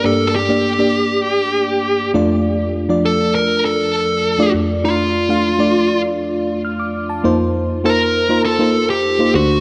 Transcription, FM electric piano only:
<<
  \new Staff \with { instrumentName = "FM electric piano" } { \time 4/4 \key f \mixolydian \tempo 4 = 100 << { r1 | r1 | r2. f'''16 d'''8 a''16~ | a''16 r2. r8. | } \\ { <bes d' g' d''>8 r16 <bes d' g' d''>16 r16 <bes d' g' d''>4~ <bes d' g' d''>16 r4 <a d' f' d''>8~ | <a d' f' d''>8 r16 <f d' f' d''>4~ <f d' f' d''>16 r4 r16 <a d' f' d''>8 r16 | <a d' f' d''>8 r16 <a d' f' f''>16 r16 <a d' f' d''>4~ <a d' f' d''>16 r4. | <bes ees' f' c''>8. r16 <bes ees' f' c''>8 r16 <bes ees' f' c''>16 r16 <bes ees' f' c''>8. r16 <bes ees' f' c''>16 <a d' fis' c''>8 | } >> }
  \new Staff \with { instrumentName = "FM electric piano" } { \clef bass \time 4/4 \key f \mixolydian g,2.~ g,8 f,8~ | f,2.~ f,8 f,8~ | f,2.~ f,8 r8 | f,2.~ f,8 <d, d>8 | }
>>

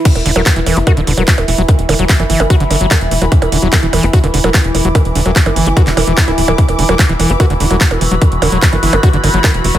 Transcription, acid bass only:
\new Staff \with { instrumentName = "Acid bass" } { \clef bass \time 4/4 \key c \lydian \tempo 4 = 147 e16 r16 d16 fis16 fis16 e16 e16 e'16 fis'16 d16 d16 fis16 fis16 r16 e16 fis16 | e16 r16 d16 fis16 fis16 e16 e16 e'16 fis'16 d16 d16 fis16 fis16 r16 e16 fis16 | e16 r16 d16 fis16 fis16 e16 e16 e'16 fis'16 d16 d16 fis16 fis16 r16 e16 fis16 | e16 r16 d16 fis16 fis16 e16 e16 e'16 fis'16 d16 e16 e16 e16 e'16 e16 e16 |
e16 r16 d16 fis16 fis16 e16 e16 e'16 fis'16 d16 d16 fis16 fis16 r16 e16 fis16 | e16 r16 d16 fis16 fis16 e16 e16 e'16 fis'16 d16 d16 fis16 fis16 r16 e16 fis16 | }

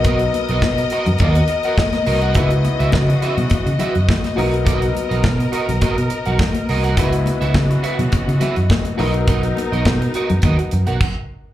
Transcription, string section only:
\new Staff \with { instrumentName = "String section" } { \time 4/4 \key b \major \tempo 4 = 104 << { <ais' dis''>1 | <cis e fis'>2.~ <cis e fis'>8 ais'8~ | ais'1 | <cis e fis'>2.~ <cis e fis'>8 <b dis' ais'>8~ |
<b dis' ais'>2. r4 | } \\ { b1~ | b1~ | b1 | b2.~ b8 r8 |
r1 | } >> }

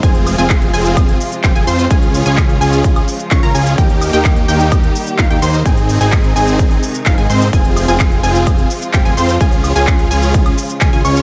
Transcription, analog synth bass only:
\new Staff \with { instrumentName = "Analog synth bass" } { \clef bass \time 4/4 \key f \minor \tempo 4 = 128 f,,8. f,,8. f,,4 r8 f,,16 f,,16 f,8 | des,8. des,8. des,4 r8 des,16 des,16 des,8 | ees,8. ees,8. ees,4 r8 ees,16 ees,16 ees,8 | aes,,8. aes,,8. aes,,4 r8 aes,,16 aes,16 aes,8 |
f,,8. f,,8. f,,4 r8 f,,16 f,,16 f,8 | des,8. des,8. des,4 r8 des,16 des,16 des,8 | }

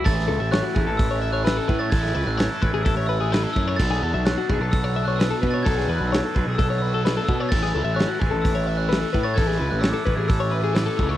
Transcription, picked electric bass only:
\new Staff \with { instrumentName = "Picked electric bass" } { \clef bass \time 4/4 \key a \major \tempo 4 = 129 a,,8 cis,16 a,,8 r16 a,,16 a,,4.~ a,,16 a,8 | a,,8 cis,16 a,,8 r16 a,,16 a,,4.~ a,,16 fis,8 | b,,8 e,16 b,,8 r16 b,,16 b,,4.~ b,,16 b,8 | b,,8 e,16 b,,8 r16 b,,16 b,,4.~ b,,16 b,8 |
a,,8 cis,16 a,,8 r16 a,,16 a,,4.~ a,,16 a,8 | a,,8 cis,16 a,,8 r16 a,,16 a,,4.~ a,,16 cis,8 | }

